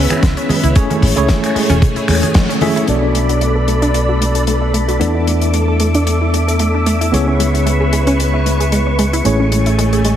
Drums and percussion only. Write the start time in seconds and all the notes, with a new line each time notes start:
0.10 finger snap, closed hi-hat, high conga
0.23 kick, snare, closed hi-hat
0.37 closed hi-hat
0.49 open hi-hat, high conga
0.64 closed hi-hat
0.76 kick, closed hi-hat
0.91 closed hi-hat, high conga
1.02 kick, open hi-hat
1.17 closed hi-hat
1.28 kick, snare, closed hi-hat, high conga
1.44 finger snap, closed hi-hat
1.56 open hi-hat
1.70 closed hi-hat, high conga
1.82 kick, closed hi-hat, low conga
1.96 closed hi-hat
2.08 finger snap, open hi-hat
2.23 closed hi-hat, high conga
2.34 kick, snare, closed hi-hat
2.50 closed hi-hat
2.61 open hi-hat, high conga
2.77 closed hi-hat
2.87 closed hi-hat
3.15 closed hi-hat
3.29 closed hi-hat
3.41 closed hi-hat
3.68 closed hi-hat
3.82 closed hi-hat
3.94 closed hi-hat
4.22 closed hi-hat
4.35 closed hi-hat
4.47 closed hi-hat
4.74 closed hi-hat
4.89 closed hi-hat
5.01 closed hi-hat
5.27 closed hi-hat
5.41 closed hi-hat
5.54 closed hi-hat
5.80 closed hi-hat
5.94 closed hi-hat
6.07 closed hi-hat
6.34 closed hi-hat
6.48 closed hi-hat
6.59 closed hi-hat
6.86 closed hi-hat
7.01 closed hi-hat
7.14 closed hi-hat
7.40 closed hi-hat
7.55 closed hi-hat
7.67 closed hi-hat
7.93 closed hi-hat
8.07 closed hi-hat
8.20 closed hi-hat
8.46 closed hi-hat
8.60 closed hi-hat
8.72 closed hi-hat
8.99 closed hi-hat
9.13 closed hi-hat
9.25 closed hi-hat
9.52 closed hi-hat
9.66 closed hi-hat
9.79 closed hi-hat
9.93 closed hi-hat
10.05 closed hi-hat